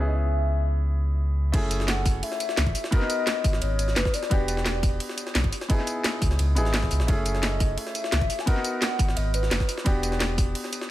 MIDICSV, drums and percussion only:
0, 0, Header, 1, 2, 480
1, 0, Start_track
1, 0, Tempo, 346821
1, 205, Time_signature, 4, 2, 24, 8
1, 15093, End_track
2, 0, Start_track
2, 0, Title_t, "Drums"
2, 2126, Note_on_c, 9, 36, 124
2, 2126, Note_on_c, 9, 42, 84
2, 2126, Note_on_c, 9, 49, 106
2, 2126, Note_on_c, 9, 51, 87
2, 2264, Note_off_c, 9, 36, 0
2, 2264, Note_off_c, 9, 42, 0
2, 2264, Note_off_c, 9, 49, 0
2, 2264, Note_off_c, 9, 51, 0
2, 2364, Note_on_c, 9, 42, 98
2, 2364, Note_on_c, 9, 54, 62
2, 2366, Note_on_c, 9, 51, 71
2, 2491, Note_on_c, 9, 38, 47
2, 2503, Note_off_c, 9, 42, 0
2, 2503, Note_off_c, 9, 54, 0
2, 2504, Note_off_c, 9, 51, 0
2, 2603, Note_off_c, 9, 38, 0
2, 2603, Note_on_c, 9, 38, 123
2, 2603, Note_on_c, 9, 42, 85
2, 2603, Note_on_c, 9, 51, 90
2, 2742, Note_off_c, 9, 38, 0
2, 2742, Note_off_c, 9, 42, 0
2, 2742, Note_off_c, 9, 51, 0
2, 2845, Note_on_c, 9, 46, 77
2, 2845, Note_on_c, 9, 51, 71
2, 2845, Note_on_c, 9, 54, 61
2, 2846, Note_on_c, 9, 36, 107
2, 2983, Note_off_c, 9, 46, 0
2, 2983, Note_off_c, 9, 51, 0
2, 2983, Note_off_c, 9, 54, 0
2, 2984, Note_off_c, 9, 36, 0
2, 3084, Note_on_c, 9, 46, 81
2, 3085, Note_on_c, 9, 42, 83
2, 3207, Note_on_c, 9, 38, 43
2, 3223, Note_off_c, 9, 42, 0
2, 3223, Note_off_c, 9, 46, 0
2, 3324, Note_on_c, 9, 51, 69
2, 3325, Note_on_c, 9, 42, 91
2, 3325, Note_on_c, 9, 54, 60
2, 3345, Note_off_c, 9, 38, 0
2, 3445, Note_on_c, 9, 38, 47
2, 3462, Note_off_c, 9, 51, 0
2, 3463, Note_off_c, 9, 42, 0
2, 3463, Note_off_c, 9, 54, 0
2, 3562, Note_off_c, 9, 38, 0
2, 3562, Note_on_c, 9, 38, 119
2, 3562, Note_on_c, 9, 51, 90
2, 3563, Note_off_c, 9, 38, 0
2, 3563, Note_on_c, 9, 38, 121
2, 3563, Note_on_c, 9, 42, 83
2, 3689, Note_off_c, 9, 51, 0
2, 3689, Note_on_c, 9, 36, 62
2, 3689, Note_on_c, 9, 51, 44
2, 3702, Note_off_c, 9, 38, 0
2, 3702, Note_off_c, 9, 42, 0
2, 3804, Note_off_c, 9, 51, 0
2, 3804, Note_on_c, 9, 51, 68
2, 3806, Note_on_c, 9, 46, 82
2, 3806, Note_on_c, 9, 54, 65
2, 3827, Note_off_c, 9, 36, 0
2, 3931, Note_on_c, 9, 38, 54
2, 3942, Note_off_c, 9, 51, 0
2, 3944, Note_off_c, 9, 46, 0
2, 3944, Note_off_c, 9, 54, 0
2, 4044, Note_on_c, 9, 51, 90
2, 4045, Note_on_c, 9, 36, 127
2, 4046, Note_on_c, 9, 42, 86
2, 4069, Note_off_c, 9, 38, 0
2, 4170, Note_on_c, 9, 38, 37
2, 4183, Note_off_c, 9, 36, 0
2, 4183, Note_off_c, 9, 51, 0
2, 4185, Note_off_c, 9, 42, 0
2, 4285, Note_on_c, 9, 51, 68
2, 4286, Note_on_c, 9, 42, 98
2, 4286, Note_on_c, 9, 54, 61
2, 4308, Note_off_c, 9, 38, 0
2, 4424, Note_off_c, 9, 42, 0
2, 4424, Note_off_c, 9, 51, 0
2, 4424, Note_off_c, 9, 54, 0
2, 4525, Note_on_c, 9, 38, 125
2, 4525, Note_on_c, 9, 42, 87
2, 4527, Note_off_c, 9, 38, 0
2, 4527, Note_on_c, 9, 38, 120
2, 4527, Note_on_c, 9, 51, 93
2, 4664, Note_off_c, 9, 42, 0
2, 4665, Note_off_c, 9, 38, 0
2, 4665, Note_off_c, 9, 51, 0
2, 4765, Note_on_c, 9, 36, 108
2, 4766, Note_on_c, 9, 51, 70
2, 4767, Note_on_c, 9, 46, 75
2, 4767, Note_on_c, 9, 54, 58
2, 4888, Note_on_c, 9, 38, 45
2, 4903, Note_off_c, 9, 36, 0
2, 4904, Note_off_c, 9, 51, 0
2, 4905, Note_off_c, 9, 46, 0
2, 4905, Note_off_c, 9, 54, 0
2, 5004, Note_on_c, 9, 51, 91
2, 5007, Note_on_c, 9, 42, 86
2, 5026, Note_off_c, 9, 38, 0
2, 5143, Note_off_c, 9, 51, 0
2, 5145, Note_off_c, 9, 42, 0
2, 5245, Note_on_c, 9, 51, 69
2, 5246, Note_on_c, 9, 42, 95
2, 5246, Note_on_c, 9, 54, 59
2, 5370, Note_on_c, 9, 38, 41
2, 5384, Note_off_c, 9, 42, 0
2, 5384, Note_off_c, 9, 51, 0
2, 5384, Note_off_c, 9, 54, 0
2, 5484, Note_off_c, 9, 38, 0
2, 5484, Note_on_c, 9, 38, 120
2, 5484, Note_on_c, 9, 51, 91
2, 5485, Note_off_c, 9, 38, 0
2, 5485, Note_on_c, 9, 38, 124
2, 5485, Note_on_c, 9, 42, 84
2, 5609, Note_off_c, 9, 38, 0
2, 5609, Note_on_c, 9, 36, 65
2, 5609, Note_on_c, 9, 38, 45
2, 5622, Note_off_c, 9, 51, 0
2, 5624, Note_off_c, 9, 42, 0
2, 5726, Note_on_c, 9, 46, 76
2, 5726, Note_on_c, 9, 54, 60
2, 5727, Note_on_c, 9, 51, 67
2, 5748, Note_off_c, 9, 36, 0
2, 5748, Note_off_c, 9, 38, 0
2, 5849, Note_on_c, 9, 38, 55
2, 5864, Note_off_c, 9, 46, 0
2, 5864, Note_off_c, 9, 54, 0
2, 5866, Note_off_c, 9, 51, 0
2, 5965, Note_on_c, 9, 36, 127
2, 5965, Note_on_c, 9, 51, 89
2, 5966, Note_on_c, 9, 42, 82
2, 5987, Note_off_c, 9, 38, 0
2, 6103, Note_off_c, 9, 36, 0
2, 6103, Note_off_c, 9, 51, 0
2, 6104, Note_off_c, 9, 42, 0
2, 6203, Note_on_c, 9, 51, 70
2, 6204, Note_on_c, 9, 42, 98
2, 6204, Note_on_c, 9, 54, 59
2, 6328, Note_on_c, 9, 38, 46
2, 6342, Note_off_c, 9, 42, 0
2, 6342, Note_off_c, 9, 51, 0
2, 6342, Note_off_c, 9, 54, 0
2, 6444, Note_off_c, 9, 38, 0
2, 6444, Note_on_c, 9, 38, 126
2, 6444, Note_on_c, 9, 42, 84
2, 6445, Note_off_c, 9, 38, 0
2, 6445, Note_on_c, 9, 38, 120
2, 6445, Note_on_c, 9, 51, 90
2, 6582, Note_off_c, 9, 42, 0
2, 6583, Note_off_c, 9, 38, 0
2, 6583, Note_off_c, 9, 51, 0
2, 6685, Note_on_c, 9, 36, 113
2, 6685, Note_on_c, 9, 46, 71
2, 6685, Note_on_c, 9, 51, 69
2, 6685, Note_on_c, 9, 54, 57
2, 6823, Note_off_c, 9, 46, 0
2, 6823, Note_off_c, 9, 51, 0
2, 6823, Note_off_c, 9, 54, 0
2, 6824, Note_off_c, 9, 36, 0
2, 6924, Note_on_c, 9, 42, 84
2, 6926, Note_on_c, 9, 46, 83
2, 7051, Note_on_c, 9, 38, 43
2, 7062, Note_off_c, 9, 42, 0
2, 7064, Note_off_c, 9, 46, 0
2, 7164, Note_on_c, 9, 42, 93
2, 7164, Note_on_c, 9, 54, 55
2, 7165, Note_on_c, 9, 51, 68
2, 7189, Note_off_c, 9, 38, 0
2, 7289, Note_on_c, 9, 38, 48
2, 7302, Note_off_c, 9, 42, 0
2, 7302, Note_off_c, 9, 54, 0
2, 7304, Note_off_c, 9, 51, 0
2, 7405, Note_off_c, 9, 38, 0
2, 7405, Note_on_c, 9, 38, 118
2, 7405, Note_on_c, 9, 51, 89
2, 7406, Note_off_c, 9, 38, 0
2, 7406, Note_on_c, 9, 38, 126
2, 7406, Note_on_c, 9, 42, 82
2, 7529, Note_off_c, 9, 51, 0
2, 7529, Note_on_c, 9, 36, 67
2, 7529, Note_on_c, 9, 51, 43
2, 7544, Note_off_c, 9, 38, 0
2, 7544, Note_off_c, 9, 42, 0
2, 7645, Note_off_c, 9, 51, 0
2, 7645, Note_on_c, 9, 51, 67
2, 7646, Note_on_c, 9, 46, 79
2, 7646, Note_on_c, 9, 54, 61
2, 7667, Note_off_c, 9, 36, 0
2, 7769, Note_on_c, 9, 38, 55
2, 7784, Note_off_c, 9, 51, 0
2, 7785, Note_off_c, 9, 46, 0
2, 7785, Note_off_c, 9, 54, 0
2, 7883, Note_on_c, 9, 51, 90
2, 7884, Note_on_c, 9, 36, 126
2, 7884, Note_on_c, 9, 42, 82
2, 7908, Note_off_c, 9, 38, 0
2, 8011, Note_on_c, 9, 38, 38
2, 8022, Note_off_c, 9, 42, 0
2, 8022, Note_off_c, 9, 51, 0
2, 8023, Note_off_c, 9, 36, 0
2, 8124, Note_on_c, 9, 51, 69
2, 8127, Note_on_c, 9, 42, 90
2, 8127, Note_on_c, 9, 54, 57
2, 8150, Note_off_c, 9, 38, 0
2, 8263, Note_off_c, 9, 51, 0
2, 8265, Note_off_c, 9, 42, 0
2, 8265, Note_off_c, 9, 54, 0
2, 8364, Note_on_c, 9, 38, 123
2, 8364, Note_on_c, 9, 51, 89
2, 8367, Note_off_c, 9, 38, 0
2, 8367, Note_on_c, 9, 38, 126
2, 8367, Note_on_c, 9, 42, 80
2, 8503, Note_off_c, 9, 51, 0
2, 8505, Note_off_c, 9, 38, 0
2, 8505, Note_off_c, 9, 42, 0
2, 8604, Note_on_c, 9, 51, 70
2, 8605, Note_on_c, 9, 36, 109
2, 8607, Note_on_c, 9, 46, 74
2, 8607, Note_on_c, 9, 54, 55
2, 8730, Note_on_c, 9, 38, 44
2, 8742, Note_off_c, 9, 51, 0
2, 8743, Note_off_c, 9, 36, 0
2, 8745, Note_off_c, 9, 46, 0
2, 8745, Note_off_c, 9, 54, 0
2, 8844, Note_on_c, 9, 51, 90
2, 8845, Note_on_c, 9, 42, 79
2, 8868, Note_off_c, 9, 38, 0
2, 8982, Note_off_c, 9, 51, 0
2, 8984, Note_off_c, 9, 42, 0
2, 9084, Note_on_c, 9, 51, 69
2, 9087, Note_on_c, 9, 42, 88
2, 9087, Note_on_c, 9, 54, 56
2, 9210, Note_on_c, 9, 38, 41
2, 9222, Note_off_c, 9, 51, 0
2, 9225, Note_off_c, 9, 42, 0
2, 9225, Note_off_c, 9, 54, 0
2, 9323, Note_off_c, 9, 38, 0
2, 9323, Note_on_c, 9, 38, 124
2, 9323, Note_on_c, 9, 51, 89
2, 9325, Note_off_c, 9, 38, 0
2, 9325, Note_on_c, 9, 38, 125
2, 9325, Note_on_c, 9, 42, 79
2, 9445, Note_off_c, 9, 38, 0
2, 9445, Note_on_c, 9, 38, 45
2, 9449, Note_on_c, 9, 36, 66
2, 9462, Note_off_c, 9, 51, 0
2, 9464, Note_off_c, 9, 42, 0
2, 9560, Note_on_c, 9, 51, 68
2, 9565, Note_on_c, 9, 46, 79
2, 9565, Note_on_c, 9, 54, 58
2, 9583, Note_off_c, 9, 38, 0
2, 9587, Note_off_c, 9, 36, 0
2, 9686, Note_on_c, 9, 38, 54
2, 9698, Note_off_c, 9, 51, 0
2, 9703, Note_off_c, 9, 46, 0
2, 9703, Note_off_c, 9, 54, 0
2, 9802, Note_on_c, 9, 51, 93
2, 9804, Note_on_c, 9, 42, 80
2, 9805, Note_on_c, 9, 36, 122
2, 9824, Note_off_c, 9, 38, 0
2, 9941, Note_off_c, 9, 51, 0
2, 9943, Note_off_c, 9, 36, 0
2, 9943, Note_off_c, 9, 42, 0
2, 10041, Note_on_c, 9, 51, 69
2, 10044, Note_on_c, 9, 42, 90
2, 10044, Note_on_c, 9, 54, 59
2, 10167, Note_on_c, 9, 38, 45
2, 10180, Note_off_c, 9, 51, 0
2, 10182, Note_off_c, 9, 42, 0
2, 10182, Note_off_c, 9, 54, 0
2, 10281, Note_off_c, 9, 38, 0
2, 10281, Note_on_c, 9, 38, 122
2, 10281, Note_on_c, 9, 42, 78
2, 10281, Note_on_c, 9, 51, 91
2, 10419, Note_off_c, 9, 51, 0
2, 10420, Note_off_c, 9, 38, 0
2, 10420, Note_off_c, 9, 42, 0
2, 10523, Note_on_c, 9, 46, 79
2, 10523, Note_on_c, 9, 51, 70
2, 10523, Note_on_c, 9, 54, 55
2, 10524, Note_on_c, 9, 36, 106
2, 10661, Note_off_c, 9, 46, 0
2, 10661, Note_off_c, 9, 51, 0
2, 10661, Note_off_c, 9, 54, 0
2, 10663, Note_off_c, 9, 36, 0
2, 10761, Note_on_c, 9, 42, 75
2, 10761, Note_on_c, 9, 46, 85
2, 10887, Note_on_c, 9, 38, 43
2, 10899, Note_off_c, 9, 46, 0
2, 10900, Note_off_c, 9, 42, 0
2, 11002, Note_on_c, 9, 42, 86
2, 11002, Note_on_c, 9, 54, 56
2, 11003, Note_on_c, 9, 51, 70
2, 11026, Note_off_c, 9, 38, 0
2, 11129, Note_on_c, 9, 38, 50
2, 11141, Note_off_c, 9, 42, 0
2, 11141, Note_off_c, 9, 54, 0
2, 11142, Note_off_c, 9, 51, 0
2, 11241, Note_off_c, 9, 38, 0
2, 11241, Note_on_c, 9, 38, 123
2, 11241, Note_on_c, 9, 51, 91
2, 11244, Note_off_c, 9, 38, 0
2, 11244, Note_on_c, 9, 38, 118
2, 11244, Note_on_c, 9, 42, 75
2, 11368, Note_off_c, 9, 51, 0
2, 11368, Note_on_c, 9, 36, 62
2, 11368, Note_on_c, 9, 51, 44
2, 11382, Note_off_c, 9, 38, 0
2, 11382, Note_off_c, 9, 42, 0
2, 11484, Note_off_c, 9, 51, 0
2, 11484, Note_on_c, 9, 51, 69
2, 11485, Note_on_c, 9, 46, 82
2, 11485, Note_on_c, 9, 54, 60
2, 11507, Note_off_c, 9, 36, 0
2, 11609, Note_on_c, 9, 38, 54
2, 11622, Note_off_c, 9, 51, 0
2, 11623, Note_off_c, 9, 46, 0
2, 11623, Note_off_c, 9, 54, 0
2, 11724, Note_on_c, 9, 36, 117
2, 11725, Note_on_c, 9, 42, 78
2, 11726, Note_on_c, 9, 51, 89
2, 11747, Note_off_c, 9, 38, 0
2, 11850, Note_on_c, 9, 38, 35
2, 11863, Note_off_c, 9, 36, 0
2, 11863, Note_off_c, 9, 42, 0
2, 11865, Note_off_c, 9, 51, 0
2, 11964, Note_on_c, 9, 42, 89
2, 11964, Note_on_c, 9, 54, 59
2, 11966, Note_on_c, 9, 51, 70
2, 11989, Note_off_c, 9, 38, 0
2, 12103, Note_off_c, 9, 42, 0
2, 12103, Note_off_c, 9, 54, 0
2, 12105, Note_off_c, 9, 51, 0
2, 12205, Note_on_c, 9, 38, 117
2, 12205, Note_on_c, 9, 42, 78
2, 12206, Note_off_c, 9, 38, 0
2, 12206, Note_on_c, 9, 38, 122
2, 12206, Note_on_c, 9, 51, 92
2, 12343, Note_off_c, 9, 42, 0
2, 12344, Note_off_c, 9, 38, 0
2, 12344, Note_off_c, 9, 51, 0
2, 12444, Note_on_c, 9, 36, 103
2, 12447, Note_on_c, 9, 46, 82
2, 12447, Note_on_c, 9, 54, 58
2, 12448, Note_on_c, 9, 51, 71
2, 12573, Note_on_c, 9, 38, 43
2, 12582, Note_off_c, 9, 36, 0
2, 12585, Note_off_c, 9, 46, 0
2, 12585, Note_off_c, 9, 54, 0
2, 12587, Note_off_c, 9, 51, 0
2, 12686, Note_on_c, 9, 42, 77
2, 12687, Note_on_c, 9, 51, 90
2, 12712, Note_off_c, 9, 38, 0
2, 12825, Note_off_c, 9, 42, 0
2, 12826, Note_off_c, 9, 51, 0
2, 12925, Note_on_c, 9, 51, 69
2, 12926, Note_on_c, 9, 42, 87
2, 12926, Note_on_c, 9, 54, 58
2, 13051, Note_on_c, 9, 38, 40
2, 13064, Note_off_c, 9, 42, 0
2, 13064, Note_off_c, 9, 51, 0
2, 13064, Note_off_c, 9, 54, 0
2, 13165, Note_off_c, 9, 38, 0
2, 13165, Note_on_c, 9, 38, 120
2, 13165, Note_on_c, 9, 51, 93
2, 13167, Note_off_c, 9, 38, 0
2, 13167, Note_on_c, 9, 38, 113
2, 13167, Note_on_c, 9, 42, 77
2, 13288, Note_on_c, 9, 36, 62
2, 13289, Note_off_c, 9, 38, 0
2, 13289, Note_on_c, 9, 38, 46
2, 13304, Note_off_c, 9, 51, 0
2, 13306, Note_off_c, 9, 42, 0
2, 13406, Note_on_c, 9, 51, 68
2, 13407, Note_on_c, 9, 46, 86
2, 13407, Note_on_c, 9, 54, 61
2, 13427, Note_off_c, 9, 36, 0
2, 13428, Note_off_c, 9, 38, 0
2, 13529, Note_on_c, 9, 38, 56
2, 13545, Note_off_c, 9, 51, 0
2, 13546, Note_off_c, 9, 46, 0
2, 13546, Note_off_c, 9, 54, 0
2, 13643, Note_on_c, 9, 51, 90
2, 13645, Note_on_c, 9, 36, 116
2, 13645, Note_on_c, 9, 42, 82
2, 13668, Note_off_c, 9, 38, 0
2, 13781, Note_off_c, 9, 51, 0
2, 13783, Note_off_c, 9, 36, 0
2, 13783, Note_off_c, 9, 42, 0
2, 13884, Note_on_c, 9, 51, 69
2, 13886, Note_on_c, 9, 42, 90
2, 13886, Note_on_c, 9, 54, 60
2, 14008, Note_on_c, 9, 38, 46
2, 14023, Note_off_c, 9, 51, 0
2, 14024, Note_off_c, 9, 42, 0
2, 14024, Note_off_c, 9, 54, 0
2, 14122, Note_off_c, 9, 38, 0
2, 14122, Note_on_c, 9, 38, 120
2, 14122, Note_on_c, 9, 51, 90
2, 14124, Note_off_c, 9, 38, 0
2, 14124, Note_on_c, 9, 38, 117
2, 14124, Note_on_c, 9, 42, 79
2, 14261, Note_off_c, 9, 51, 0
2, 14263, Note_off_c, 9, 38, 0
2, 14263, Note_off_c, 9, 42, 0
2, 14365, Note_on_c, 9, 36, 101
2, 14365, Note_on_c, 9, 51, 70
2, 14366, Note_on_c, 9, 46, 80
2, 14366, Note_on_c, 9, 54, 60
2, 14504, Note_off_c, 9, 36, 0
2, 14504, Note_off_c, 9, 46, 0
2, 14504, Note_off_c, 9, 51, 0
2, 14504, Note_off_c, 9, 54, 0
2, 14604, Note_on_c, 9, 42, 79
2, 14604, Note_on_c, 9, 46, 83
2, 14728, Note_on_c, 9, 38, 44
2, 14742, Note_off_c, 9, 42, 0
2, 14742, Note_off_c, 9, 46, 0
2, 14844, Note_on_c, 9, 51, 71
2, 14846, Note_on_c, 9, 42, 89
2, 14846, Note_on_c, 9, 54, 60
2, 14867, Note_off_c, 9, 38, 0
2, 14967, Note_on_c, 9, 38, 50
2, 14982, Note_off_c, 9, 51, 0
2, 14984, Note_off_c, 9, 42, 0
2, 14984, Note_off_c, 9, 54, 0
2, 15093, Note_off_c, 9, 38, 0
2, 15093, End_track
0, 0, End_of_file